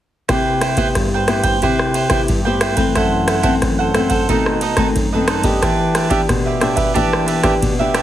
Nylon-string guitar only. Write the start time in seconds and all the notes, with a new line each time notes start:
0.29 C3 E4 G4
0.77 B3 E4 G4
0.96 G2
1.28 B3 E4 G4
1.62 C3 E4 G4
2.10 B3 E4 G4
2.29 G2
2.46 B3 E4 G4
2.77 E3 A3 C4
2.96 F#2
3.44 E3 A3 C4
3.63 F#2
3.94 E3 A3 C4
4.29 B2 D#3 A3 C4
4.77 D#3 A3 C4
4.95 F#2
5.14 D#3 A3 C4
5.44 B3 D4 G4
5.63 E3
6.10 B3 D4 G4
6.29 B2
6.62 B3 D4 G4
6.96 E3 B3 D4 G4
7.43 B3 D4 G4
7.62 B2
7.80 B3 D4 G4